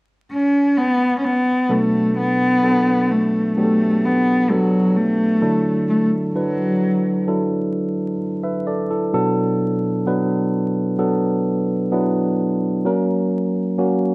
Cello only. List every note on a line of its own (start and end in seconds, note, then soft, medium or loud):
0.32 0.79 C#4 medium
0.78 1.17 B3 medium
1.18 1.26 C#4 soft
1.25 1.72 B3 medium
1.70 2.17 A3 medium
2.18 3.13 B3 medium
3.12 3.57 A3 medium
3.58 4.07 A3 medium
4.05 4.52 B3 medium
4.51 4.98 F#3 medium
4.97 5.89 A3 medium
5.89 6.09 A3 medium
6.36 7.25 F#3 medium